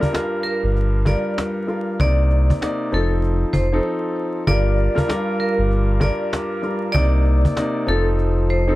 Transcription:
Already playing: vibraphone D5
0.00 grand piano G2 G3 F4 A#4, cajon bass
0.13 grand piano G2 G3 F4 A#4, cajon slap
0.43 vibraphone A#4, cajon slap
0.63 sub bass G1
0.76 cajon slap
1.05 grand piano G2 G3 F4 A#4, vibraphone D5, cajon bass
1.38 cajon slap
1.67 grand piano G2 G3 F4 A#4, cajon slap
2.00 sub bass C2, grand piano C3 A#3 D#4 D5, vibraphone D5, cajon bass
2.30 cajon slap
2.50 cajon bass
2.61 grand piano C3 A#3 D#4 D5, cajon slap
2.92 sub bass F1, grand piano F3 C4 D#4 A4, vibraphone A4, cajon slap
3.24 cajon slap
3.53 sub bass F1, vibraphone C5, cajon bass
3.73 grand piano F3 C4 D#4 A4
4.47 sub bass G1, grand piano G2 G3 F4 A#4, tonewheel organ G3 F4 A#4 D5, vibraphone D5, cajon bass
4.78 cajon slap
4.95 grand piano G2 G3 F4 A#4, cajon bass
5.08 grand piano G2 G3 F4 A#4, cajon slap
5.39 vibraphone A#4, cajon slap
5.58 sub bass G1
5.71 cajon slap
6.00 grand piano G2 G3 F4 A#4, vibraphone D5, cajon bass
6.33 cajon slap
6.62 grand piano G2 G3 F4 A#4, cajon slap
6.92 sub bass C2, tonewheel organ C3 A#3 D#4, grand piano C3 A#3 D#4, vibraphone D5, cajon bass
6.96 grand piano D5
7.25 cajon slap
7.45 cajon bass
7.56 grand piano C3 A#3 D#4 D5, cajon slap
7.87 sub bass F1, grand piano F3 C4 D#4 A4, tonewheel organ F3 C4 A4, vibraphone A4, cajon slap
8.19 cajon slap
8.49 vibraphone C5, cajon slap
8.68 grand piano F3 C4 D#4 A4

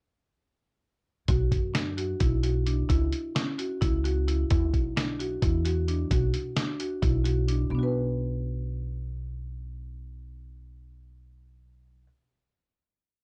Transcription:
1.28 upright bass B1, marimba F#4, kick, closed hi-hat
1.51 upright bass F#2, kick, closed hi-hat
1.74 marimba D4, snare, closed hi-hat
1.97 marimba F#4, closed hi-hat
2.20 upright bass B1, marimba E4, kick, closed hi-hat
2.43 marimba F#4, closed hi-hat
2.66 marimba D4, closed hi-hat
2.89 upright bass C#2, marimba E4, kick, closed hi-hat
3.13 closed hi-hat
3.35 marimba C#4, snare, closed hi-hat
3.58 marimba F#4, closed hi-hat
3.81 upright bass C#2, marimba E4, kick, closed hi-hat
4.04 marimba F#4, closed hi-hat
4.28 marimba E4, closed hi-hat
4.50 upright bass E2, marimba E4, kick, closed hi-hat
4.73 upright bass B1, kick, closed hi-hat
4.96 marimba D4, snare, closed hi-hat
5.19 marimba F#4, closed hi-hat
5.42 upright bass E2, marimba E4, kick, closed hi-hat
5.65 marimba F#4, closed hi-hat
5.88 marimba D4, closed hi-hat
6.11 upright bass B1, marimba F#4, kick, closed hi-hat
6.34 closed hi-hat
6.57 marimba D4, snare, closed hi-hat
6.80 marimba F#4, closed hi-hat
7.02 upright bass B1, marimba E4, kick, closed hi-hat
7.24 marimba F#4, closed hi-hat
7.48 marimba D4, closed hi-hat
7.70 upright bass B1, marimba B3
7.75 marimba D4
7.79 marimba F#4 B4

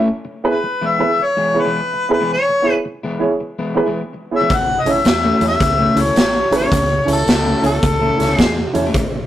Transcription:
0.25 muted clean electric guitar stroke
0.44 upright piano B3 E4 G#4 B4
0.50 harmonica B4
0.63 muted clean electric guitar stroke
0.81 clean electric guitar E3 G#3 B3 E4
0.87 harmonica E5
0.99 upright piano B3 E4 G#4 B4
1.19 muted clean electric guitar stroke
1.24 harmonica C#5
1.37 clean electric guitar E3 G#3 B3 E4
1.54 upright piano B3 E4 G#4 C#5
1.60 harmonica B4
1.65 clean electric guitar E3 G#3 B3 E4
1.93 muted clean electric guitar stroke
2.09 upright piano B3 E4 G#4 B4, harmonica B4
2.20 clean electric guitar E3 G#3 B3 E4
2.33 harmonica C#5
2.49 muted clean electric guitar stroke
2.62 upright piano B3 E4 G#4 C#5
2.85 muted clean electric guitar stroke
3.03 clean electric guitar E3 G#3 B3 E4
3.19 upright piano B3 E4 G#4 C#5
3.40 muted clean electric guitar stroke
3.59 clean electric guitar E3 G#3 B3 E4
3.75 upright piano B3 E4 G#4 B4
3.86 clean electric guitar E3 G#3 B3 E4
4.13 muted clean electric guitar stroke
4.31 upright piano B3 E4 G#4 C#5
4.36 harmonica E5
4.41 clean electric guitar E3 G#3 B3 E4
4.50 fingered electric bass A1, kick, closed hi-hat
4.56 harmonica F#5
4.70 muted clean electric guitar stroke
4.80 harmonica D#5
4.86 fingered electric bass A1, upright piano C#4 E4 A4 C#5, closed hi-hat
4.92 harmonica E5
5.05 fingered electric bass E2, muted clean electric guitar stroke, snare, closed hi-hat
5.23 clean electric guitar A2 A3 C#4 E4
5.40 fingered electric bass E2, upright piano C#4 E4 A4 C#5, closed hi-hat
5.48 harmonica E5
5.60 fingered electric bass C#2, muted clean electric guitar stroke, kick, snare, closed hi-hat
5.78 clean electric guitar A2 A3 C#4 E4
5.95 fingered electric bass C#2, upright piano C#4 E4 A4 C#5, closed hi-hat
6.01 harmonica C#5
6.05 clean electric guitar A2 A3 C#4 E4
6.15 fingered electric bass A1, snare, closed hi-hat
6.34 muted clean electric guitar stroke
6.51 fingered electric bass A1, upright piano C#4 E4 A4 B4, closed hi-hat
6.57 harmonica C#5
6.62 clean electric guitar A2 A3 C#4 E4
6.71 fingered electric bass C#2, kick, closed hi-hat
6.90 muted clean electric guitar stroke
7.05 fingered electric bass C#2, upright piano C#4 E4 A4 C#5, closed hi-hat
7.12 harmonica A4
7.26 muted clean electric guitar stroke, snare, closed hi-hat
7.44 clean electric guitar A2 A3 C#4 E4
7.61 fingered electric bass C#2, upright piano C#4 E4 A4 C#5, closed hi-hat
7.66 harmonica A4
7.83 fingered electric bass C#2, muted clean electric guitar stroke, kick, closed hi-hat
8.01 clean electric guitar A2 A3 C#4 E4
8.17 fingered electric bass C#2, upright piano C#4 E4 A4 C#5, snare, closed hi-hat
8.28 clean electric guitar A2 A3 C#4 E4
8.36 fingered electric bass E2, harmonica G#4, kick, snare, closed hi-hat
8.57 muted clean electric guitar stroke
8.73 fingered electric bass E2, upright piano C#4 E4 A4 C#5, closed hi-hat
8.86 clean electric guitar A2 A3 C#4 E4
8.94 fingered electric bass A1, kick, closed hi-hat
9.14 muted clean electric guitar stroke

